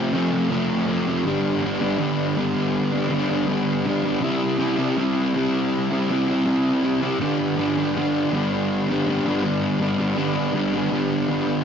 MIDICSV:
0, 0, Header, 1, 2, 480
1, 0, Start_track
1, 0, Key_signature, 1, "major"
1, 0, Tempo, 744417
1, 806, Time_signature, 4, 2, 24, 8
1, 7505, End_track
2, 0, Start_track
2, 0, Title_t, "Distorted electric guitar"
2, 0, Program_c, 0, 30
2, 0, Note_on_c, 0, 48, 85
2, 0, Note_on_c, 0, 53, 60
2, 0, Note_on_c, 0, 57, 66
2, 0, Note_on_c, 0, 60, 78
2, 74, Note_off_c, 0, 48, 0
2, 82, Note_on_c, 0, 48, 75
2, 84, Note_off_c, 0, 53, 0
2, 87, Note_off_c, 0, 57, 0
2, 92, Note_off_c, 0, 60, 0
2, 92, Note_on_c, 0, 53, 85
2, 95, Note_on_c, 0, 57, 85
2, 100, Note_on_c, 0, 60, 73
2, 195, Note_off_c, 0, 60, 0
2, 203, Note_on_c, 0, 60, 79
2, 205, Note_off_c, 0, 57, 0
2, 213, Note_on_c, 0, 57, 72
2, 214, Note_off_c, 0, 53, 0
2, 222, Note_on_c, 0, 53, 60
2, 314, Note_off_c, 0, 48, 0
2, 317, Note_on_c, 0, 41, 84
2, 321, Note_off_c, 0, 53, 0
2, 322, Note_on_c, 0, 48, 82
2, 326, Note_off_c, 0, 57, 0
2, 329, Note_on_c, 0, 53, 87
2, 331, Note_off_c, 0, 60, 0
2, 334, Note_on_c, 0, 57, 102
2, 339, Note_on_c, 0, 60, 93
2, 545, Note_off_c, 0, 48, 0
2, 552, Note_on_c, 0, 48, 66
2, 556, Note_off_c, 0, 53, 0
2, 560, Note_off_c, 0, 57, 0
2, 564, Note_on_c, 0, 53, 71
2, 566, Note_off_c, 0, 60, 0
2, 567, Note_on_c, 0, 57, 84
2, 573, Note_on_c, 0, 60, 83
2, 677, Note_off_c, 0, 60, 0
2, 685, Note_on_c, 0, 60, 78
2, 690, Note_off_c, 0, 57, 0
2, 694, Note_off_c, 0, 53, 0
2, 698, Note_on_c, 0, 57, 60
2, 702, Note_on_c, 0, 53, 63
2, 785, Note_off_c, 0, 48, 0
2, 787, Note_off_c, 0, 41, 0
2, 791, Note_off_c, 0, 60, 0
2, 798, Note_off_c, 0, 57, 0
2, 800, Note_off_c, 0, 53, 0
2, 806, Note_on_c, 0, 43, 92
2, 810, Note_on_c, 0, 50, 96
2, 814, Note_on_c, 0, 55, 102
2, 820, Note_on_c, 0, 59, 99
2, 824, Note_on_c, 0, 62, 96
2, 1039, Note_off_c, 0, 50, 0
2, 1047, Note_on_c, 0, 50, 72
2, 1051, Note_off_c, 0, 55, 0
2, 1054, Note_off_c, 0, 59, 0
2, 1054, Note_on_c, 0, 55, 78
2, 1056, Note_off_c, 0, 62, 0
2, 1061, Note_on_c, 0, 59, 87
2, 1064, Note_on_c, 0, 62, 75
2, 1151, Note_off_c, 0, 62, 0
2, 1159, Note_off_c, 0, 59, 0
2, 1159, Note_on_c, 0, 62, 72
2, 1167, Note_on_c, 0, 59, 67
2, 1177, Note_off_c, 0, 55, 0
2, 1179, Note_on_c, 0, 55, 63
2, 1269, Note_off_c, 0, 43, 0
2, 1274, Note_off_c, 0, 50, 0
2, 1277, Note_on_c, 0, 43, 96
2, 1281, Note_off_c, 0, 59, 0
2, 1282, Note_on_c, 0, 50, 101
2, 1284, Note_off_c, 0, 55, 0
2, 1287, Note_on_c, 0, 55, 88
2, 1289, Note_on_c, 0, 59, 96
2, 1291, Note_off_c, 0, 62, 0
2, 1298, Note_on_c, 0, 62, 95
2, 1517, Note_off_c, 0, 50, 0
2, 1525, Note_on_c, 0, 50, 82
2, 1526, Note_off_c, 0, 55, 0
2, 1529, Note_on_c, 0, 55, 85
2, 1530, Note_off_c, 0, 59, 0
2, 1538, Note_off_c, 0, 62, 0
2, 1538, Note_on_c, 0, 59, 98
2, 1546, Note_on_c, 0, 62, 88
2, 1762, Note_off_c, 0, 43, 0
2, 1875, Note_off_c, 0, 62, 0
2, 1883, Note_on_c, 0, 62, 65
2, 1888, Note_off_c, 0, 59, 0
2, 1895, Note_on_c, 0, 59, 69
2, 1900, Note_off_c, 0, 55, 0
2, 1903, Note_on_c, 0, 55, 54
2, 1987, Note_off_c, 0, 50, 0
2, 1995, Note_on_c, 0, 50, 82
2, 2003, Note_off_c, 0, 55, 0
2, 2006, Note_off_c, 0, 59, 0
2, 2006, Note_on_c, 0, 55, 77
2, 2007, Note_off_c, 0, 62, 0
2, 2014, Note_on_c, 0, 59, 78
2, 2015, Note_on_c, 0, 62, 94
2, 2113, Note_off_c, 0, 62, 0
2, 2121, Note_on_c, 0, 62, 75
2, 2125, Note_off_c, 0, 59, 0
2, 2133, Note_on_c, 0, 59, 68
2, 2138, Note_off_c, 0, 55, 0
2, 2140, Note_on_c, 0, 55, 62
2, 2230, Note_off_c, 0, 50, 0
2, 2238, Note_on_c, 0, 43, 91
2, 2238, Note_on_c, 0, 50, 91
2, 2241, Note_off_c, 0, 55, 0
2, 2242, Note_off_c, 0, 59, 0
2, 2244, Note_on_c, 0, 55, 87
2, 2247, Note_off_c, 0, 62, 0
2, 2250, Note_on_c, 0, 59, 97
2, 2254, Note_on_c, 0, 62, 94
2, 2476, Note_off_c, 0, 50, 0
2, 2483, Note_on_c, 0, 50, 70
2, 2490, Note_off_c, 0, 55, 0
2, 2490, Note_off_c, 0, 59, 0
2, 2490, Note_off_c, 0, 62, 0
2, 2493, Note_on_c, 0, 55, 79
2, 2497, Note_on_c, 0, 62, 86
2, 2498, Note_on_c, 0, 59, 78
2, 2593, Note_off_c, 0, 62, 0
2, 2601, Note_on_c, 0, 62, 80
2, 2604, Note_off_c, 0, 59, 0
2, 2612, Note_on_c, 0, 59, 71
2, 2617, Note_off_c, 0, 55, 0
2, 2620, Note_on_c, 0, 55, 64
2, 2708, Note_off_c, 0, 43, 0
2, 2710, Note_off_c, 0, 50, 0
2, 2710, Note_off_c, 0, 62, 0
2, 2712, Note_on_c, 0, 48, 94
2, 2716, Note_off_c, 0, 59, 0
2, 2719, Note_off_c, 0, 55, 0
2, 2721, Note_on_c, 0, 55, 99
2, 2729, Note_on_c, 0, 60, 92
2, 2732, Note_on_c, 0, 64, 99
2, 2947, Note_off_c, 0, 48, 0
2, 2954, Note_on_c, 0, 48, 65
2, 2958, Note_off_c, 0, 60, 0
2, 2959, Note_off_c, 0, 55, 0
2, 2962, Note_on_c, 0, 55, 82
2, 2966, Note_off_c, 0, 64, 0
2, 2966, Note_on_c, 0, 60, 71
2, 2974, Note_on_c, 0, 64, 82
2, 3063, Note_off_c, 0, 64, 0
2, 3071, Note_on_c, 0, 64, 72
2, 3075, Note_off_c, 0, 60, 0
2, 3083, Note_on_c, 0, 60, 66
2, 3087, Note_off_c, 0, 55, 0
2, 3090, Note_on_c, 0, 55, 60
2, 3192, Note_off_c, 0, 48, 0
2, 3199, Note_on_c, 0, 48, 96
2, 3202, Note_off_c, 0, 55, 0
2, 3205, Note_on_c, 0, 55, 98
2, 3207, Note_off_c, 0, 60, 0
2, 3212, Note_off_c, 0, 64, 0
2, 3215, Note_on_c, 0, 60, 97
2, 3220, Note_on_c, 0, 64, 95
2, 3435, Note_off_c, 0, 48, 0
2, 3443, Note_on_c, 0, 48, 86
2, 3450, Note_off_c, 0, 55, 0
2, 3450, Note_off_c, 0, 60, 0
2, 3453, Note_on_c, 0, 55, 84
2, 3456, Note_off_c, 0, 64, 0
2, 3457, Note_on_c, 0, 60, 85
2, 3464, Note_on_c, 0, 64, 96
2, 3799, Note_off_c, 0, 64, 0
2, 3807, Note_on_c, 0, 64, 74
2, 3810, Note_off_c, 0, 60, 0
2, 3818, Note_on_c, 0, 60, 70
2, 3820, Note_off_c, 0, 55, 0
2, 3823, Note_on_c, 0, 55, 65
2, 3917, Note_off_c, 0, 48, 0
2, 3925, Note_on_c, 0, 48, 70
2, 3933, Note_off_c, 0, 55, 0
2, 3935, Note_off_c, 0, 60, 0
2, 3936, Note_on_c, 0, 55, 80
2, 3940, Note_off_c, 0, 64, 0
2, 3943, Note_on_c, 0, 60, 71
2, 3948, Note_on_c, 0, 64, 83
2, 4042, Note_off_c, 0, 64, 0
2, 4050, Note_on_c, 0, 64, 76
2, 4052, Note_off_c, 0, 60, 0
2, 4060, Note_on_c, 0, 60, 73
2, 4068, Note_off_c, 0, 55, 0
2, 4070, Note_on_c, 0, 55, 65
2, 4150, Note_off_c, 0, 48, 0
2, 4158, Note_on_c, 0, 48, 79
2, 4161, Note_off_c, 0, 55, 0
2, 4163, Note_on_c, 0, 55, 91
2, 4165, Note_off_c, 0, 60, 0
2, 4168, Note_off_c, 0, 64, 0
2, 4173, Note_on_c, 0, 60, 107
2, 4176, Note_on_c, 0, 64, 98
2, 4391, Note_off_c, 0, 48, 0
2, 4399, Note_on_c, 0, 48, 79
2, 4400, Note_off_c, 0, 60, 0
2, 4404, Note_off_c, 0, 55, 0
2, 4407, Note_on_c, 0, 55, 78
2, 4408, Note_on_c, 0, 60, 79
2, 4409, Note_off_c, 0, 64, 0
2, 4417, Note_on_c, 0, 64, 84
2, 4515, Note_off_c, 0, 64, 0
2, 4522, Note_off_c, 0, 60, 0
2, 4523, Note_on_c, 0, 64, 80
2, 4530, Note_on_c, 0, 60, 68
2, 4535, Note_off_c, 0, 55, 0
2, 4537, Note_on_c, 0, 55, 61
2, 4629, Note_off_c, 0, 48, 0
2, 4631, Note_off_c, 0, 64, 0
2, 4634, Note_off_c, 0, 60, 0
2, 4634, Note_on_c, 0, 43, 88
2, 4642, Note_on_c, 0, 50, 100
2, 4644, Note_off_c, 0, 55, 0
2, 4646, Note_on_c, 0, 55, 105
2, 4650, Note_on_c, 0, 59, 95
2, 4655, Note_on_c, 0, 62, 92
2, 4873, Note_off_c, 0, 50, 0
2, 4880, Note_on_c, 0, 50, 78
2, 4888, Note_off_c, 0, 55, 0
2, 4889, Note_off_c, 0, 59, 0
2, 4890, Note_on_c, 0, 55, 82
2, 4891, Note_on_c, 0, 59, 77
2, 4893, Note_off_c, 0, 62, 0
2, 4896, Note_on_c, 0, 62, 77
2, 4996, Note_off_c, 0, 62, 0
2, 4999, Note_on_c, 0, 62, 72
2, 5006, Note_off_c, 0, 59, 0
2, 5009, Note_on_c, 0, 59, 72
2, 5014, Note_off_c, 0, 55, 0
2, 5017, Note_on_c, 0, 55, 65
2, 5124, Note_off_c, 0, 43, 0
2, 5127, Note_on_c, 0, 43, 89
2, 5128, Note_off_c, 0, 50, 0
2, 5136, Note_off_c, 0, 55, 0
2, 5136, Note_on_c, 0, 50, 98
2, 5138, Note_on_c, 0, 55, 94
2, 5141, Note_off_c, 0, 59, 0
2, 5144, Note_on_c, 0, 59, 105
2, 5146, Note_off_c, 0, 62, 0
2, 5149, Note_on_c, 0, 62, 115
2, 5352, Note_off_c, 0, 50, 0
2, 5360, Note_on_c, 0, 50, 93
2, 5368, Note_off_c, 0, 55, 0
2, 5371, Note_on_c, 0, 55, 76
2, 5375, Note_off_c, 0, 59, 0
2, 5378, Note_on_c, 0, 59, 88
2, 5380, Note_off_c, 0, 62, 0
2, 5383, Note_on_c, 0, 62, 88
2, 5724, Note_off_c, 0, 62, 0
2, 5727, Note_on_c, 0, 62, 71
2, 5737, Note_off_c, 0, 59, 0
2, 5740, Note_on_c, 0, 59, 70
2, 5746, Note_off_c, 0, 55, 0
2, 5748, Note_on_c, 0, 55, 54
2, 5839, Note_off_c, 0, 50, 0
2, 5847, Note_on_c, 0, 50, 73
2, 5857, Note_off_c, 0, 55, 0
2, 5859, Note_off_c, 0, 59, 0
2, 5860, Note_on_c, 0, 55, 82
2, 5862, Note_on_c, 0, 59, 82
2, 5866, Note_off_c, 0, 62, 0
2, 5868, Note_on_c, 0, 62, 83
2, 5965, Note_off_c, 0, 62, 0
2, 5968, Note_on_c, 0, 62, 70
2, 5970, Note_off_c, 0, 59, 0
2, 5973, Note_on_c, 0, 59, 72
2, 5980, Note_off_c, 0, 55, 0
2, 5983, Note_on_c, 0, 55, 63
2, 6080, Note_off_c, 0, 43, 0
2, 6080, Note_off_c, 0, 50, 0
2, 6082, Note_on_c, 0, 43, 98
2, 6088, Note_on_c, 0, 50, 98
2, 6089, Note_off_c, 0, 55, 0
2, 6092, Note_on_c, 0, 55, 90
2, 6093, Note_off_c, 0, 59, 0
2, 6095, Note_off_c, 0, 62, 0
2, 6095, Note_on_c, 0, 59, 98
2, 6098, Note_on_c, 0, 62, 103
2, 6305, Note_off_c, 0, 50, 0
2, 6313, Note_on_c, 0, 50, 82
2, 6319, Note_off_c, 0, 55, 0
2, 6321, Note_on_c, 0, 55, 80
2, 6323, Note_off_c, 0, 59, 0
2, 6326, Note_on_c, 0, 59, 73
2, 6329, Note_off_c, 0, 62, 0
2, 6332, Note_on_c, 0, 62, 92
2, 6433, Note_off_c, 0, 62, 0
2, 6436, Note_on_c, 0, 62, 72
2, 6445, Note_off_c, 0, 59, 0
2, 6447, Note_on_c, 0, 59, 70
2, 6450, Note_off_c, 0, 55, 0
2, 6452, Note_on_c, 0, 55, 60
2, 6546, Note_off_c, 0, 50, 0
2, 6548, Note_off_c, 0, 43, 0
2, 6550, Note_on_c, 0, 43, 98
2, 6553, Note_off_c, 0, 55, 0
2, 6555, Note_on_c, 0, 50, 91
2, 6555, Note_on_c, 0, 55, 87
2, 6560, Note_off_c, 0, 59, 0
2, 6562, Note_on_c, 0, 59, 104
2, 6567, Note_off_c, 0, 62, 0
2, 6569, Note_on_c, 0, 62, 110
2, 6784, Note_off_c, 0, 50, 0
2, 6791, Note_on_c, 0, 50, 72
2, 6793, Note_off_c, 0, 55, 0
2, 6797, Note_off_c, 0, 59, 0
2, 6801, Note_on_c, 0, 55, 82
2, 6803, Note_off_c, 0, 62, 0
2, 6804, Note_on_c, 0, 59, 74
2, 6810, Note_on_c, 0, 62, 82
2, 6911, Note_off_c, 0, 62, 0
2, 6919, Note_on_c, 0, 62, 77
2, 6922, Note_off_c, 0, 59, 0
2, 6930, Note_on_c, 0, 59, 75
2, 6933, Note_off_c, 0, 55, 0
2, 6940, Note_on_c, 0, 55, 68
2, 7025, Note_off_c, 0, 43, 0
2, 7033, Note_off_c, 0, 50, 0
2, 7033, Note_on_c, 0, 43, 89
2, 7034, Note_off_c, 0, 55, 0
2, 7041, Note_on_c, 0, 50, 91
2, 7042, Note_on_c, 0, 55, 102
2, 7045, Note_off_c, 0, 59, 0
2, 7046, Note_off_c, 0, 62, 0
2, 7053, Note_on_c, 0, 59, 91
2, 7053, Note_on_c, 0, 62, 93
2, 7271, Note_off_c, 0, 50, 0
2, 7279, Note_on_c, 0, 50, 80
2, 7280, Note_off_c, 0, 55, 0
2, 7281, Note_off_c, 0, 59, 0
2, 7288, Note_on_c, 0, 55, 83
2, 7289, Note_off_c, 0, 62, 0
2, 7289, Note_on_c, 0, 59, 91
2, 7297, Note_on_c, 0, 62, 81
2, 7505, Note_off_c, 0, 43, 0
2, 7505, Note_off_c, 0, 50, 0
2, 7505, Note_off_c, 0, 55, 0
2, 7505, Note_off_c, 0, 59, 0
2, 7505, Note_off_c, 0, 62, 0
2, 7505, End_track
0, 0, End_of_file